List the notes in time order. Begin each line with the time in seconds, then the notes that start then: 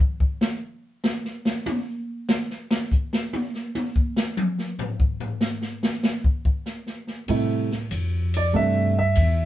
0.20 kick
0.41 snare, hi-hat pedal
1.04 snare
1.25 snare
1.45 snare
1.66 hi-hat pedal, high tom
2.29 snare
2.50 snare
2.71 snare
2.92 kick, hi-hat pedal
3.13 snare
3.33 high tom
3.54 snare
3.75 high tom
3.96 kick
4.16 snare, hi-hat pedal
4.37 mid tom
4.58 snare
4.79 floor tom
5.00 kick
5.20 floor tom
5.41 snare, hi-hat pedal
5.61 snare
5.83 snare
6.03 snare
6.24 kick
6.45 kick
6.66 snare, hi-hat pedal
6.86 snare
7.07 snare
7.28 A2 C3 G3 A3 E4, ride
7.71 snare
7.91 F2, hi-hat pedal, ride
8.34 D5, ride
8.53 G2 C3 G3 A3 D4 E5
8.99 E5
9.15 E2, hi-hat pedal, ride